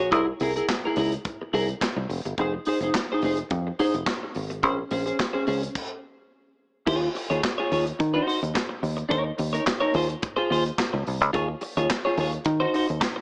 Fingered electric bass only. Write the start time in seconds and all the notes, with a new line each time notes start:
Already playing: A#1
0.12 C2
0.41 C2
0.97 C#2
1.54 C2
1.96 C2
2.09 F1
2.25 G1
2.38 F1
2.81 F1
3.23 F1
3.51 F2
3.94 F1
4.36 G#1
4.63 A#1
4.91 A#1
5.48 C#2
6.87 D#2
7.30 D#2
7.72 D#2
8.00 D#3
8.43 D#2
8.83 D#2
9.11 D#2
9.39 D#2
9.95 D#2
10.51 D#2
10.94 C#2
11.07 C2
11.21 C#2
11.34 D#2
11.77 D#2
12.18 D#2
12.46 D#3
12.90 D#2